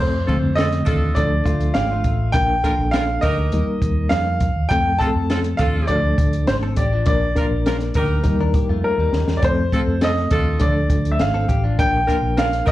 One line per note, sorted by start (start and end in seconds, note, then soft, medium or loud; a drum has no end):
0.00 0.24 F2 medium
0.00 0.19 F3 medium
0.00 0.19 A3 medium
0.00 0.19 C4 medium
0.00 0.19 A4 medium
0.00 0.58 C5 medium
0.27 1.09 D3 medium
0.27 1.09 F3 medium
0.27 0.35 G#3 medium
0.27 0.37 C4 medium
0.27 1.08 C4 medium
0.27 0.37 F4 medium
0.27 0.37 A4 medium
0.27 kick medium
0.27 closed hi-hat medium
0.35 1.12 A3 medium
0.42 0.81 F2 medium
0.55 0.67 C4 medium
0.55 0.66 F4 medium
0.55 0.66 A4 medium
0.55 1.17 D#5 medium
0.55 snare loud
0.55 closed hi-hat medium
0.72 snare soft
0.72 closed hi-hat soft
0.85 1.13 D#2 medium
0.85 1.28 D4 medium
0.85 1.28 F4 medium
0.85 1.28 A4 loud
0.85 kick medium
0.85 closed hi-hat medium
1.15 1.42 D2 medium
1.15 2.11 F3 medium
1.15 2.11 A3 medium
1.15 2.11 D4 medium
1.15 2.11 A4 medium
1.15 1.77 D5 medium
1.15 kick medium
1.15 closed hi-hat medium
1.46 1.71 D2 medium
1.46 1.74 A3 soft
1.46 1.74 F4 medium
1.46 kick medium
1.46 closed hi-hat medium
1.61 closed hi-hat soft
1.74 2.01 G#1 medium
1.74 1.90 G4 medium
1.74 2.36 F5 medium
1.74 snare loud
1.74 closed hi-hat medium
1.91 2.33 A3 medium
1.91 2.33 F4 medium
2.04 2.30 A1 medium
2.04 kick medium
2.04 closed hi-hat medium
2.32 2.60 A#1 medium
2.32 2.55 F3 medium
2.32 2.55 A#3 medium
2.32 2.55 D4 medium
2.32 2.55 A#4 medium
2.32 2.94 G5 loud
2.32 kick loud
2.32 closed hi-hat medium
2.64 3.45 F3 medium
2.64 3.45 A#3 medium
2.64 2.74 D4 medium
2.64 3.45 D4 medium
2.64 2.73 F4 medium
2.64 3.45 A4 medium
2.64 2.74 A#4 medium
2.64 kick medium
2.64 closed hi-hat medium
2.78 3.17 A#1 medium
2.91 3.03 D4 medium
2.91 3.03 F4 medium
2.91 3.03 A#4 medium
2.91 3.23 F5 medium
2.91 snare loud
2.91 closed hi-hat medium
3.21 3.49 D2 medium
3.21 3.65 D#4 medium
3.21 3.65 G4 loud
3.21 3.65 A#4 loud
3.21 4.13 D#5 medium
3.21 kick medium
3.21 closed hi-hat medium
3.52 3.65 D#2 medium
3.52 4.47 G3 medium
3.52 4.47 A#3 medium
3.52 4.48 D#4 medium
3.52 4.47 A#4 medium
3.52 closed hi-hat medium
3.67 muted fingered electric bass stroke soft
3.82 4.07 D#2 medium
3.82 kick medium
3.82 closed hi-hat medium
4.09 4.50 F2 medium
4.09 4.71 F5 medium
4.09 snare medium
4.09 closed hi-hat medium
4.40 kick medium
4.40 closed hi-hat medium
4.56 4.69 D#2 medium
4.69 4.96 F2 medium
4.69 4.91 F3 medium
4.69 4.91 A3 medium
4.69 4.91 C4 medium
4.69 4.91 A4 medium
4.69 5.00 G5 loud
4.69 kick medium
4.69 closed hi-hat medium
4.99 5.81 F3 medium
4.99 5.82 A3 medium
4.99 5.09 C4 medium
4.99 5.82 C4 medium
4.99 5.09 F4 medium
4.99 5.07 G#4 medium
4.99 5.09 A4 medium
4.99 5.60 A5 loud
4.99 kick medium
4.99 closed hi-hat medium
5.07 5.85 A4 medium
5.15 5.53 F2 medium
5.30 5.39 C4 medium
5.30 5.39 F4 medium
5.30 5.39 A4 medium
5.30 snare loud
5.30 closed hi-hat medium
5.44 closed hi-hat medium
5.57 5.85 D#2 medium
5.57 6.01 D4 loud
5.57 6.02 F4 medium
5.57 6.01 A4 loud
5.57 5.64 F5 medium
5.57 kick medium
5.57 closed hi-hat medium
5.87 6.14 D2 loud
5.87 6.84 F3 medium
5.87 6.84 A3 medium
5.87 6.84 D4 medium
5.87 6.83 A4 medium
5.87 6.49 D5 medium
5.87 kick medium
5.87 closed hi-hat medium
6.18 6.44 D2 medium
6.18 kick medium
6.18 closed hi-hat medium
6.33 closed hi-hat soft
6.47 6.73 G#1 medium
6.47 6.54 C5 medium
6.47 snare loud
6.47 closed hi-hat medium
6.63 6.77 C4 medium
6.63 6.76 A4 medium
6.76 7.03 A1 medium
6.76 6.91 G4 medium
6.76 7.05 D5 medium
6.76 kick medium
6.76 closed hi-hat medium
6.93 7.21 F3 medium
6.93 7.21 D4 medium
7.06 7.32 A#1 medium
7.06 7.27 F3 medium
7.06 7.27 A#3 medium
7.06 7.27 D4 medium
7.06 7.27 A#4 medium
7.06 7.91 D5 medium
7.06 kick loud
7.06 closed hi-hat medium
7.35 8.17 F3 medium
7.35 8.17 A#3 medium
7.35 8.17 D4 medium
7.35 7.46 D4 medium
7.35 7.46 F4 medium
7.35 8.17 A#4 medium
7.35 7.46 A#4 medium
7.35 kick medium
7.35 closed hi-hat medium
7.51 7.89 A#1 medium
7.66 7.75 D4 medium
7.66 7.76 F4 medium
7.66 7.76 A#4 medium
7.66 snare loud
7.66 closed hi-hat medium
7.80 snare soft
7.80 closed hi-hat soft
7.94 8.21 D2 medium
7.94 8.38 D#4 medium
7.94 8.38 G4 loud
7.94 8.38 A#4 loud
7.94 kick medium
7.94 closed hi-hat medium
8.23 8.38 D#2 loud
8.23 9.19 G3 medium
8.23 9.19 A#3 medium
8.23 9.19 D#4 medium
8.23 9.19 A#4 medium
8.23 kick medium
8.23 closed hi-hat medium
8.39 8.52 D#2 medium
8.39 8.54 D4 medium
8.39 8.54 A#4 medium
8.54 8.69 A#3 medium
8.54 8.69 G4 medium
8.54 kick medium
8.54 closed hi-hat medium
8.69 8.82 F2 medium
8.69 8.98 A3 medium
8.69 8.97 F4 medium
8.84 9.38 A#4 medium
8.98 9.11 D#2 medium
8.98 9.41 G3 medium
8.98 9.41 D#4 medium
9.13 9.26 D#2 medium
9.13 snare medium
9.28 9.41 E2 medium
9.28 snare medium
9.37 9.44 D5 medium
9.42 9.68 F2 loud
9.42 9.63 F3 medium
9.42 9.63 A3 medium
9.42 9.63 C4 medium
9.42 9.63 A4 medium
9.42 10.05 C5 medium
9.42 kick loud
9.42 closed hi-hat medium
9.72 10.54 F3 medium
9.72 10.53 A3 medium
9.72 9.82 C4 medium
9.72 10.54 C4 medium
9.72 9.82 F4 medium
9.72 9.82 A4 medium
9.72 10.54 A4 medium
9.72 kick medium
9.72 closed hi-hat medium
9.87 10.25 F2 medium
10.01 10.11 C4 medium
10.01 10.11 F4 medium
10.01 10.11 A4 medium
10.01 10.64 D#5 medium
10.01 snare loud
10.01 closed hi-hat medium
10.16 snare soft
10.31 10.57 D#2 medium
10.31 10.73 D4 loud
10.31 10.73 F4 medium
10.31 10.74 A4 loud
10.31 kick loud
10.31 closed hi-hat medium
10.60 10.87 D2 medium
10.60 11.55 F3 medium
10.60 11.55 A3 medium
10.60 11.55 D4 medium
10.60 11.55 A4 medium
10.60 11.14 D5 medium
10.60 kick medium
10.60 closed hi-hat medium
10.90 11.21 D2 medium
10.90 kick medium
10.90 closed hi-hat medium
11.05 closed hi-hat soft
11.12 11.19 E5 medium
11.19 11.45 G#1 medium
11.19 11.81 F5 medium
11.19 snare medium
11.19 closed hi-hat medium
11.34 11.49 C4 medium
11.34 11.48 A4 medium
11.48 11.75 A1 medium
11.48 11.63 G4 medium
11.48 kick medium
11.48 closed hi-hat medium
11.64 11.92 F3 medium
11.64 11.92 D4 medium
11.78 12.04 A#1 medium
11.78 11.99 F3 medium
11.78 11.99 A#3 medium
11.78 11.99 D4 medium
11.78 11.99 A#4 medium
11.78 12.40 G5 loud
11.78 kick loud
11.78 closed hi-hat medium
12.07 12.72 F3 medium
12.07 12.72 A#3 medium
12.07 12.16 D4 medium
12.07 12.72 D4 medium
12.07 12.17 F4 medium
12.07 12.17 A#4 medium
12.07 12.72 A#4 medium
12.07 kick medium
12.07 closed hi-hat medium
12.22 12.61 A#1 medium
12.36 12.46 D4 medium
12.36 12.47 F4 medium
12.36 12.47 A#4 medium
12.36 12.68 F5 medium
12.36 snare loud
12.36 closed hi-hat medium
12.53 snare soft
12.53 closed hi-hat medium
12.65 12.72 D2 medium
12.65 12.72 D#4 medium
12.65 12.72 G4 loud
12.65 12.72 A#4 loud
12.65 12.72 D#5 medium
12.65 kick medium
12.65 closed hi-hat medium